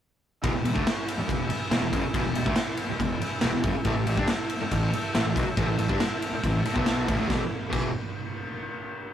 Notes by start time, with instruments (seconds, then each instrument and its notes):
0.42 picked electric bass E1, distorted electric guitar E2 B2, transistor combo organ G#4 B4 E5, kick, ride
0.52 picked electric bass E1, distorted electric guitar E2 B2
0.63 picked electric bass E1, distorted electric guitar E2 B2, transistor combo organ G#4 B4 E5, ride
0.73 picked electric bass D2, distorted electric guitar D3 A3, kick
0.84 transistor combo organ G#4 B4, muted picked electric bass stroke, muted distorted electric guitar stroke, snare, ride
0.88 transistor combo organ C#5
1.08 transistor combo organ G#4 B4 E5, ride
1.17 muted picked electric bass stroke, muted distorted electric guitar stroke
1.26 picked electric bass E1, distorted electric guitar E2 B2, transistor combo organ G#4 B4 E5, kick, ride
1.47 transistor combo organ G#4 B4 E5, muted distorted electric guitar stroke, muted picked electric bass stroke, ride
1.69 picked electric bass E1, distorted electric guitar E2, transistor combo organ G#4 B4 E5, snare, ride
1.74 distorted electric guitar B2
1.81 picked electric bass E1, distorted electric guitar E2 B2
1.91 picked electric bass F#1, distorted electric guitar F#2 C#3, transistor combo organ G#4 B4 E5, kick, ride
2.04 muted distorted electric guitar stroke, muted picked electric bass stroke
2.08 transistor combo organ G#4 B4 E5
2.14 picked electric bass E1, distorted electric guitar E2 B2, kick, ride
2.26 picked electric bass E1, distorted electric guitar E2 B2
2.32 distorted electric guitar E2, transistor combo organ G#4 B4 E5, ride
2.36 picked electric bass E1, distorted electric guitar B2
2.45 picked electric bass D2, distorted electric guitar D3 A3, kick
2.54 transistor combo organ G#4 B4 E5, muted distorted electric guitar stroke, snare, ride
2.59 muted picked electric bass stroke
2.76 transistor combo organ G#4 B4 E5, ride
2.89 muted distorted electric guitar stroke, muted picked electric bass stroke
2.98 picked electric bass E1, distorted electric guitar E2 B2, transistor combo organ G#4 B4 E5, kick, ride
3.21 transistor combo organ G#4 B4 E5, muted picked electric bass stroke, muted distorted electric guitar stroke, ride
3.41 picked electric bass E1, distorted electric guitar E2 B2, transistor combo organ G#4 B4 E5, snare, ride
3.53 picked electric bass E1, distorted electric guitar E2 B2
3.62 picked electric bass F#1, distorted electric guitar F#2 C#3, transistor combo organ G#4 B4 E5, kick, ride
3.75 muted picked electric bass stroke, muted distorted electric guitar stroke
3.83 picked electric bass A1, distorted electric guitar A2 E3, transistor combo organ E4 A4 E5, kick, ride
3.96 picked electric bass A1, distorted electric guitar A2 E3
4.06 picked electric bass A1, distorted electric guitar A2 E3, transistor combo organ E4 A4 E5, ride
4.16 picked electric bass G2, distorted electric guitar G3 D4, kick
4.27 transistor combo organ E4 A4 E5, muted distorted electric guitar stroke, muted picked electric bass stroke, snare, ride
4.48 transistor combo organ E4 A4 E5, ride
4.61 muted distorted electric guitar stroke, muted picked electric bass stroke
4.71 picked electric bass A1, distorted electric guitar A2 E3, transistor combo organ E4 A4 E5, kick, ride
4.93 transistor combo organ E4 A4 E5, muted picked electric bass stroke, muted distorted electric guitar stroke, ride
5.14 picked electric bass A1, distorted electric guitar A2 E3, transistor combo organ E4 A4 E5, snare, ride
5.24 picked electric bass A1, distorted electric guitar A2 E3
5.35 picked electric bass B1, distorted electric guitar B2 F#3, transistor combo organ E4 A4 E5, kick, ride
5.46 muted picked electric bass stroke, muted distorted electric guitar stroke
5.57 picked electric bass A1, distorted electric guitar A2 E3, transistor combo organ E4 A4 E5, kick, ride
5.67 picked electric bass A1, distorted electric guitar A2 E3
5.78 picked electric bass A1, distorted electric guitar A2 E3, transistor combo organ E4 A4 E5, ride
5.88 picked electric bass G2, distorted electric guitar G3 D4, kick
5.99 transistor combo organ E4 A4 E5, muted picked electric bass stroke, muted distorted electric guitar stroke, snare, ride
6.21 transistor combo organ E4 A4 E5, ride
6.31 muted picked electric bass stroke, muted distorted electric guitar stroke
6.43 picked electric bass A1, distorted electric guitar A2 E3, transistor combo organ E4 A4 E5, kick, ride
6.64 transistor combo organ E4 A4 E5, muted picked electric bass stroke, muted distorted electric guitar stroke, ride
6.73 picked electric bass B1, distorted electric guitar B2 F#3 B3, kick
6.86 transistor combo organ E4 A4 E5 A5, snare, ride
7.06 picked electric bass A1, distorted electric guitar A2 E3, transistor combo organ E4 A4 D5, kick, ride
7.17 picked electric bass D2, distorted electric guitar D3 A3, transistor combo organ E5
7.28 picked electric bass E1, distorted electric guitar E2 B2 E3, kick, snare
7.34 transistor combo organ G#4 B4 E5
7.69 picked electric bass E1, distorted electric guitar E2 B2 E3, kick, crash